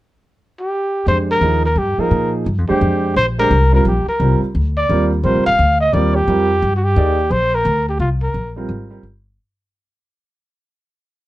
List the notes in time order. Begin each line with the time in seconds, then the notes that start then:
0.60 G4
1.06 F2 G#3 D4 G4 C5
1.31 A#4
1.41 D#2 F3 A#3 D#4 G#4
1.66 A#4
1.76 G2 G4
1.98 F3 A#3 D#4 G#4 A#4, muted upright bass stroke
2.11 A#2
2.46 G2
2.58 F2
2.68 D#2 G#3 D4 G4 C5
2.81 F2
3.16 A#1 C5
3.38 G#3 D4 G4 A#4 C5
3.51 C2
3.72 G3 C4 F4 A#4
3.85 A#1 G4
4.07 A#4, muted upright bass stroke
4.20 C2 G3 C4 F4 A#4
4.41 muted upright bass stroke
4.55 D2
4.77 D5
4.89 D#2 G3 C4 F4 A#4
5.23 A#1 G3 C4 F4 A#4 C5
5.35 F1
5.46 D#1 F5
5.59 D2
5.81 D#5
5.93 D#2 G3 C4 F4 A#4 D5
6.15 G4
6.28 F2 G3 C4 F4 A#4
6.62 G2
6.76 F#4
6.84 G4
6.96 D#2 A#3 D#4 G#4 D5
7.31 A#1 C5
7.55 A#4
7.65 D2
7.89 G4
7.99 C2 F4
8.23 A#4
8.34 A#1
8.56 G3 C4 F4 A#4
8.69 G#1
8.90 G3 C4 F4 A#4
9.03 G1